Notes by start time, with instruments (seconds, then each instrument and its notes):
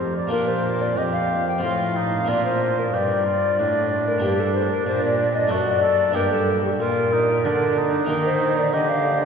Already playing: harpsichord F2 G4, cello F2, oboe C5
0.16 oboe D5
0.27 harpsichord A#3 D4 F4
0.32 harpsichord A#2, cello A#2, oboe F4, recorder A#4
0.48 recorder C5
0.81 recorder D5
0.97 cello F2, harpsichord F2, oboe G4, recorder D#5
1.13 recorder F5
1.48 recorder G5
1.58 harpsichord C4 F4
1.63 harpsichord A2, cello A2, oboe F4, recorder F5
1.97 oboe D#4
2.24 harpsichord A#3 D4 F4
2.29 cello A#2, harpsichord A#2, oboe F4, recorder D5
2.45 recorder C5
2.79 recorder A#4
2.94 cello G2, harpsichord G2, oboe G4, recorder D5
3.26 oboe F4
3.59 cello A2, harpsichord A2, oboe D4
4.08 recorder A#4
4.18 harpsichord A#3 D4 G4
4.22 cello G2, harpsichord G2, oboe D4, recorder G4
4.40 recorder A4
4.54 recorder C5
4.71 recorder A#4
4.87 harpsichord A#2, cello A#2, recorder C5
5.02 recorder D5
5.35 recorder D#5
5.47 harpsichord A3 D4 A4
5.51 harpsichord F#2, cello F#2, oboe F#4, recorder D5
5.83 oboe A4
6.12 cello G2, harpsichord A#3 D4 G4, oboe G4, recorder A#4
6.16 harpsichord G2
6.31 recorder A4
6.64 recorder G4
6.80 cello A#2, harpsichord A#2, oboe F4, recorder A#4
7.13 oboe D#4
7.45 cello D3, harpsichord D3, oboe D4
7.78 oboe D#4
8.04 harpsichord A#3 D#4 G4
8.09 cello D#3, harpsichord D#3, recorder A#4
8.26 recorder C5
8.58 recorder D5
8.73 harpsichord D3, cello D3, oboe G4, recorder D#5
8.90 recorder F5